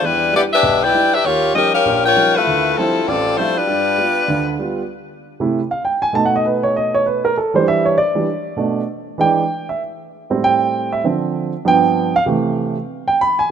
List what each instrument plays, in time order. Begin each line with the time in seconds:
0.02 grand piano E2, saxophone section G3 D4 E4 B4
0.32 grand piano G3 D4 E4, saxophone section B3 E4 G4 D5
0.53 saxophone section D4 G4 B4 E5
0.63 grand piano B1 B2
0.83 saxophone section E4 B4 D5 G5
0.93 grand piano G3 D4 E4
1.14 saxophone section D4 G4 B4 E5
1.24 grand piano D#2, saxophone section A#3 F4 G4 C#5
1.55 grand piano F3 G3 C#4 D#4, saxophone section C#4 G4 A#4 D#5
1.75 saxophone section C#4 G4 A#4 F5
1.85 grand piano A#1 A#2
2.06 saxophone section F4 A#4 C#5 G5
2.16 grand piano F3 G3 C#4 D#4
2.37 saxophone section A3 E4 F4 B4
2.47 grand piano D2
2.77 grand piano F3 G3 C4 D4 E4, saxophone section F3 C4 E4 A4
3.08 grand piano A1, saxophone section C4 F4 A4 D5
3.38 grand piano F3 G3 C4 D4 E4, saxophone section A3 E4 F4 C5
3.57 saxophone section G3 D4 F4 B4
3.67 grand piano G2
3.98 grand piano G3 B3 F4
4.28 grand piano D2 D3
4.59 grand piano G3 B3 F4
5.40 grand piano C3 A3 E4
5.71 grand piano F5
5.85 grand piano G5
6.02 grand piano G#5
6.13 grand piano B2 A3 D#4 A5
6.26 grand piano F#5
6.36 grand piano D#5
6.46 grand piano B4
6.63 grand piano C#5
6.76 grand piano D#5
6.95 grand piano C#5
7.06 grand piano B4
7.25 grand piano A#4
7.38 grand piano A4
7.54 grand piano E3 G3 D4 C5
7.68 grand piano E5
7.85 grand piano C#5
7.98 grand piano D5
8.15 grand piano E3 G3 D4
8.56 grand piano B2 A3 D4
9.18 grand piano E3 G#3 D4 G5
9.69 grand piano E5
10.30 grand piano A2 G3 C4
10.44 grand piano G5
10.93 grand piano E5
11.04 grand piano D3 F3 C4
11.65 grand piano G2 F3 B3 G5
12.16 grand piano F5
12.26 grand piano C3 E3 A3
13.08 grand piano G5
13.21 grand piano B5
13.39 grand piano G#5